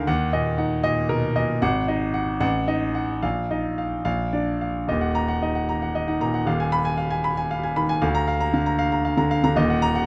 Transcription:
Already playing: D2 D3 D#3 A#4 F5 G#5
0.07 D#2 F#5
0.33 A#2 D#5
0.58 D#4 F#5
0.84 A#2 D#5
1.09 B2 A#4
1.36 A#2 D#5
1.62 G#1 F#5
1.88 D#4 D#5
2.14 F#5
2.40 A1 F#5
2.67 D#4 D#5
2.95 F#5
3.22 A#1 F5
3.51 D#4 D#5
3.78 F5
4.05 A#1 F5
4.33 D4 D5
4.61 F5
4.88 D#1 D#2 D#5
5.01 F#5
5.15 A#5
5.28 F#5
5.42 D#4 D#5
5.55 F#5
5.69 A#5
5.82 F#5
5.95 D#5
6.08 D#4 F#5
6.21 A#2 A#5
6.34 F#5
6.45 D#1 D#2 F5
6.60 G#5
6.72 B5
6.85 G#5
6.97 F5
7.11 G#5
7.24 B5
7.37 G#5
7.51 F5
7.63 G#5
7.76 D#3 B5
7.89 G#5
8.02 D2 F5
8.15 A#5
8.28 F5
8.40 A#5
8.53 D3 F5
8.66 A#5
8.79 F5
8.92 A#5
9.05 F5
9.17 D3 A#5
9.31 F5
9.44 D3 A#5
9.55 D#1 D#2 D#5
9.70 F#5
9.82 A#5
9.95 F#5

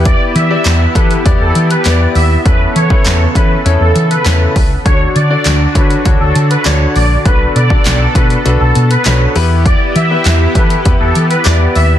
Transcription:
Already playing: E2 B3 E4 G4 B4
0.05 D5, kick, closed hi-hat
0.35 E3 E5, closed hi-hat
0.50 B3 E4 G4 D5
0.65 E2, snare, clap, closed hi-hat
0.95 E3 B3 E4 G4 A4 B4, kick, closed hi-hat
1.11 closed hi-hat
1.25 E2 B3 E4 G4 D5, kick, closed hi-hat
1.40 E2 A4
1.55 E3, closed hi-hat
1.70 B4, closed hi-hat
1.85 E2 B3 E4 G4 B4 D5, snare, clap, closed hi-hat
2.15 D#2 E5, open hi-hat
2.45 E2 C#3 C#4 E4 A4 B4, kick, closed hi-hat
2.76 E3 C#5, closed hi-hat
2.90 C#4 E4 A4 B4, kick
3.05 E2, snare, clap, closed hi-hat
3.35 E3 C#4 E4 A4 B4, kick, closed hi-hat
3.65 E2 C#4 E4 A4 C#5, closed hi-hat
3.80 E2 A4
3.95 E3, closed hi-hat
4.11 B4, closed hi-hat
4.25 E2 C#4 E4 A4 B4, snare, clap, closed hi-hat
4.56 C#2, kick, open hi-hat
4.85 D2 D3 D4 F#4 A4 C#5, kick, closed hi-hat
5.16 D3 D5, closed hi-hat
5.30 D4 F#4 A4 D5
5.45 D2, snare, clap, closed hi-hat
5.75 D3 D4 F#4 A4 B4 C#5, kick, closed hi-hat
5.90 closed hi-hat
6.05 D2 D4 F#4 A4 C#5, kick, closed hi-hat
6.20 D2 A4
6.35 D3, closed hi-hat
6.50 B4, closed hi-hat
6.65 D2 D4 F#4 A4 C#5 D5, snare, clap, closed hi-hat
6.95 A#1 D5, open hi-hat
7.25 B1 B3 D4 F#4 A4 B4, kick, closed hi-hat
7.55 B2 D5, closed hi-hat
7.70 D4 F#4 A4 D5, kick
7.85 B1, snare, clap, closed hi-hat
8.15 B2 D4 F#4 A4 B4, kick, closed hi-hat
8.30 closed hi-hat
8.45 B1 D4 F#4 A4 B4, closed hi-hat
8.60 B1 A4
8.75 B2, closed hi-hat
8.90 B4, closed hi-hat
9.05 B1 D4 F#4 A4 C#5, snare, clap, closed hi-hat
9.35 E2 B3 E4 G4 B4, open hi-hat
9.66 D5, kick, closed hi-hat
9.96 E3 E5, closed hi-hat
10.11 B3 E4 G4 B4
10.25 E2, snare, clap, closed hi-hat
10.55 E3 B3 E4 G4 A4 B4, kick, closed hi-hat
10.70 closed hi-hat
10.85 E2 B3 E4 G4 B4, kick, closed hi-hat
11.00 E2 A4
11.15 E3, closed hi-hat
11.30 B4, closed hi-hat
11.45 E2 B3 E4 G4 B4 D5, snare, clap, closed hi-hat
11.75 D#2 E5, open hi-hat

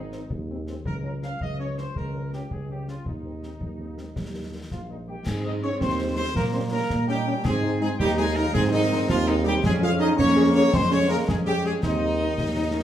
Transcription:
Already playing: G#1 D#4
0.12 D#3 G#3 C4, snare
0.30 D#2, concert bass drum
0.50 D#3 G#3 C4
0.67 D#3 G#3 C4, snare
0.85 C#2 A#4, concert bass drum
1.03 F3 C#4 A#4
1.23 F3 C#4 F5, snare
1.41 C#2 D#5, concert bass drum
1.59 F3 C#4 C#5
1.78 F3 C#4 C5, snare
1.96 C#2 A#4, concert bass drum
2.15 F3 C#4
2.33 F3 C#4 G4, snare
2.51 C#2 G#4, concert bass drum
2.69 F3 C#4 G4
2.87 F3 C#4 F4, snare
3.06 D#2 D#4, concert bass drum
3.24 D#3 G#3 C4
3.42 D#3 G#3 C4, snare
3.61 D#2 D#3, concert bass drum
3.79 D#3 G#3 A#3 C4
3.97 D#3 G#3 C4, snare
4.16 D#2 G3, concert bass drum, snare
4.34 D#3 G3 A#3
4.53 D#3 G3 A#3
4.71 A#1 F3 F4 F5, concert bass drum, snare
4.89 D#3 G3 A#3 D#4 D#5
5.07 D#3 G3 A#3 G4 G5
5.25 G#2 G#3 C4 G#4 G#5, concert bass drum, snare, crash
5.44 G#3 C4 D#4 D#5 D#6
5.62 G#3 C4 C#4 C#5 C#6
5.80 D#2 C4 C5 C6, concert bass drum, snare
6.00 G#3 C4
6.16 G#3 C4 C5 C6
6.35 A#2 A#3 A#4 A#5, concert bass drum, snare
6.53 G3 C4 C#4 C5 C6
6.71 G3 A#3 C#4 A#4 A#5
6.90 A#2 G3, concert bass drum, snare
7.07 G3 C#4 D#4 G4 G5
7.27 G3 C#4
7.43 G#2 G#3 C4 G#4 G#5, concert bass drum, snare, crash
7.63 G#3 C4 D#4
7.80 G#3 C4 D#4 G#4 G#5
7.98 D#2 G3 D#4 G4 G5, concert bass drum, snare
8.17 G#3 C4 D#4 G#4 G#5
8.35 G#3 A#3 C4 D#4 A#4 A#5
8.53 G#2 G#3 C4 G#4 G#5, concert bass drum, snare
8.70 D#3 G#3 C4 D#4 D#5
8.92 G#3 C4 D#4
9.09 D#2 F3 F4 F5, concert bass drum, snare
9.26 D#3 G#3 C4 D#4 D#5
9.44 G3 G#3 C4 D#4 G4 G5
9.63 F2 G#3 C#4 G#4 G#5, concert bass drum, snare, crash
9.82 G#3 C#4 F4 G#4 F5 F6
10.00 G#3 C#4 D#4 G#4 D#5 D#6
10.16 F2 A#3 C#4 C#5 C#6, concert bass drum, snare
10.37 G#3 C#4 G#4
10.54 G#3 C#4 G#4 C#5 C#6
10.72 F2 G#3 C4 C5 C6, concert bass drum, snare
10.90 G#3 C#4 G#4 C#5 C#6
11.08 G#3 A#3 C#4 G#4 A#4 A#5
11.27 F2 G#3 C#4 G#4 G#5, concert bass drum, snare
11.45 G3 G#3 C#4 G4 G#4 G5
11.63 G#3 C#4 G#4 G#5
11.81 D#2 D#3 C4 D#4 D#5, concert bass drum, snare, crash
12.01 G#3 C4 D#4
12.21 G#3 C4 D#4
12.38 D#2 G#3, concert bass drum, snare
12.54 G#3 C4 D#4
12.72 G#3 C4 C#4 D#4

